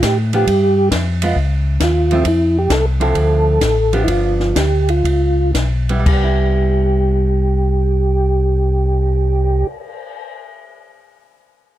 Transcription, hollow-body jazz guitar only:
0, 0, Header, 1, 2, 480
1, 0, Start_track
1, 0, Key_signature, 0, "major"
1, 0, Tempo, 447094
1, 504, Time_signature, 4, 2, 24, 8
1, 3385, Tempo, 472069
1, 5305, Tempo, 509338
1, 6265, Tempo, 527241
1, 11475, End_track
2, 0, Start_track
2, 0, Title_t, "Hollow-body jazz guitar"
2, 0, Program_c, 0, 26
2, 362, Note_on_c, 0, 53, 56
2, 367, Note_on_c, 0, 59, 66
2, 375, Note_on_c, 0, 62, 65
2, 495, Note_off_c, 0, 53, 0
2, 497, Note_off_c, 0, 59, 0
2, 501, Note_off_c, 0, 62, 0
2, 1323, Note_on_c, 0, 56, 58
2, 1327, Note_on_c, 0, 59, 72
2, 1334, Note_on_c, 0, 65, 69
2, 1454, Note_off_c, 0, 56, 0
2, 1456, Note_off_c, 0, 59, 0
2, 1460, Note_off_c, 0, 65, 0
2, 2276, Note_on_c, 0, 53, 62
2, 2280, Note_on_c, 0, 57, 63
2, 2285, Note_on_c, 0, 60, 68
2, 2292, Note_on_c, 0, 64, 70
2, 2409, Note_off_c, 0, 53, 0
2, 2411, Note_off_c, 0, 57, 0
2, 2414, Note_off_c, 0, 60, 0
2, 2418, Note_off_c, 0, 64, 0
2, 3223, Note_on_c, 0, 50, 59
2, 3229, Note_on_c, 0, 53, 59
2, 3231, Note_on_c, 0, 60, 60
2, 3235, Note_on_c, 0, 64, 62
2, 3818, Note_off_c, 0, 50, 0
2, 3821, Note_off_c, 0, 53, 0
2, 3821, Note_off_c, 0, 60, 0
2, 3824, Note_off_c, 0, 64, 0
2, 4176, Note_on_c, 0, 53, 64
2, 4186, Note_on_c, 0, 59, 65
2, 4188, Note_on_c, 0, 62, 67
2, 4779, Note_off_c, 0, 53, 0
2, 4784, Note_off_c, 0, 59, 0
2, 4785, Note_off_c, 0, 62, 0
2, 6115, Note_on_c, 0, 55, 53
2, 6119, Note_on_c, 0, 59, 58
2, 6125, Note_on_c, 0, 64, 55
2, 6191, Note_off_c, 0, 55, 0
2, 6202, Note_on_c, 0, 55, 58
2, 6256, Note_off_c, 0, 59, 0
2, 6259, Note_off_c, 0, 64, 0
2, 6325, Note_on_c, 0, 59, 58
2, 6426, Note_on_c, 0, 64, 63
2, 9504, Note_off_c, 0, 55, 0
2, 9625, Note_off_c, 0, 59, 0
2, 9727, Note_off_c, 0, 64, 0
2, 11475, End_track
0, 0, End_of_file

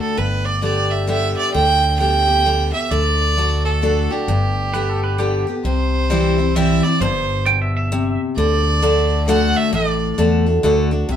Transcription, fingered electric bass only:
0, 0, Header, 1, 2, 480
1, 0, Start_track
1, 0, Key_signature, 1, "major"
1, 0, Tempo, 454545
1, 191, Time_signature, 3, 2, 24, 8
1, 11789, End_track
2, 0, Start_track
2, 0, Title_t, "Fingered electric bass"
2, 0, Program_c, 0, 33
2, 190, Note_on_c, 0, 31, 78
2, 1412, Note_off_c, 0, 31, 0
2, 1636, Note_on_c, 0, 38, 83
2, 2856, Note_off_c, 0, 38, 0
2, 3073, Note_on_c, 0, 38, 83
2, 4294, Note_off_c, 0, 38, 0
2, 4516, Note_on_c, 0, 31, 82
2, 5736, Note_off_c, 0, 31, 0
2, 5961, Note_on_c, 0, 36, 81
2, 7178, Note_off_c, 0, 36, 0
2, 7399, Note_on_c, 0, 31, 86
2, 8616, Note_off_c, 0, 31, 0
2, 8840, Note_on_c, 0, 38, 87
2, 10056, Note_off_c, 0, 38, 0
2, 10273, Note_on_c, 0, 33, 78
2, 10680, Note_off_c, 0, 33, 0
2, 10752, Note_on_c, 0, 40, 75
2, 11160, Note_off_c, 0, 40, 0
2, 11233, Note_on_c, 0, 38, 78
2, 11641, Note_off_c, 0, 38, 0
2, 11711, Note_on_c, 0, 36, 80
2, 11789, Note_off_c, 0, 36, 0
2, 11789, End_track
0, 0, End_of_file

